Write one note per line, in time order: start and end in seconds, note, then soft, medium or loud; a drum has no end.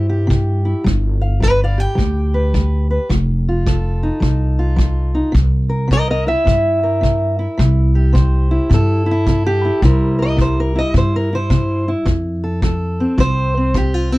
0.00 0.72 G2 loud
0.00 0.25 C3 medium
0.00 0.64 E4 soft
0.00 0.31 C5 loud
0.09 0.83 G4 soft
0.27 0.81 C3 medium
0.27 kick medium
0.65 0.83 E4 soft
0.84 1.85 G1 loud
0.84 1.37 G3 medium
0.84 kick medium
1.21 1.45 F5 soft
1.40 1.93 G3 medium
1.40 1.61 B4 medium
1.40 kick medium
1.45 1.62 D#5 loud
1.64 1.81 D5 medium
1.64 1.80 F5 medium
1.78 3.07 G4 soft
1.78 3.67 G5 loud
1.95 2.97 D2 medium
1.95 2.49 G3 medium
1.95 kick medium
2.34 2.89 B4 medium
2.54 3.06 G3 medium
2.54 kick medium
2.91 3.08 B4 soft
3.09 4.09 F1 medium
3.09 3.62 F3 medium
3.09 kick medium
3.49 4.58 F4 soft
3.66 4.18 F3 medium
3.66 5.35 A4 soft
3.66 kick medium
4.03 5.13 D#4 soft
4.20 5.21 C2 loud
4.20 4.73 F3 medium
4.20 kick medium
4.59 5.32 F4 soft
4.76 5.30 F3 medium
4.76 kick medium
5.15 5.32 D#4 soft
5.32 6.33 C2 loud
5.32 5.85 C3 medium
5.32 kick medium
5.69 5.91 A#4 soft
5.88 6.41 C3 medium
5.88 kick medium
5.92 6.09 A#4 medium
5.92 6.10 D#5 loud
6.10 6.28 A#4 medium
6.10 6.28 D#5 medium
6.27 7.38 E4 soft
6.27 8.13 E5 medium
6.45 7.45 G2 medium
6.45 6.98 C3 medium
6.45 kick medium
6.83 7.60 A#4 soft
7.01 7.54 C3 medium
7.01 kick medium
7.39 8.51 E4 soft
7.57 8.58 C2 loud
7.57 8.10 C3 medium
7.57 kick medium
7.95 9.08 G4 soft
8.13 8.66 C3 medium
8.13 8.70 C5 soft
8.13 kick medium
8.51 9.05 E4 soft
8.70 9.69 G2 medium
8.70 9.22 C3 medium
8.70 kick medium
8.74 9.28 A4 medium
9.06 9.10 E4 soft
9.11 9.46 E4 medium
9.26 9.79 C3 medium
9.26 9.84 A4 medium
9.26 kick medium
9.47 9.83 G4 medium
9.65 9.81 E4 soft
9.82 10.81 C2 loud
9.82 10.35 C3 medium
9.82 12.07 G3 medium
9.82 10.74 E4 medium
9.82 10.17 A#4 medium
9.82 10.22 C5 medium
9.82 kick medium
10.19 10.57 A#4 soft
10.19 10.40 D#5 medium
10.36 10.90 C3 medium
10.36 kick medium
10.41 10.59 C5 medium
10.60 10.77 A#4 medium
10.76 11.31 E4 soft
10.76 10.96 D#5 medium
10.94 11.93 G2 medium
10.94 11.46 C3 medium
10.94 11.15 C5 medium
10.94 kick medium
11.16 11.33 A#4 medium
11.33 11.87 E4 soft
11.33 11.89 C5 medium
11.50 12.02 C3 medium
11.50 kick medium
11.88 12.05 E4 soft
12.06 13.04 F2 loud
12.06 12.58 F3 medium
12.06 kick medium
12.44 12.62 A4 soft
12.62 13.15 F3 medium
12.62 13.19 A4 soft
12.62 kick medium
13.00 13.57 C4 soft
13.18 14.16 C2 medium
13.18 13.70 F3 medium
13.18 13.75 C5 loud
13.18 kick medium
13.57 14.12 C4 soft
13.74 14.18 F3 medium
13.74 13.94 G4 medium
13.74 kick medium
13.94 14.12 F4 medium
14.12 14.18 C4 medium
14.12 14.18 E4 loud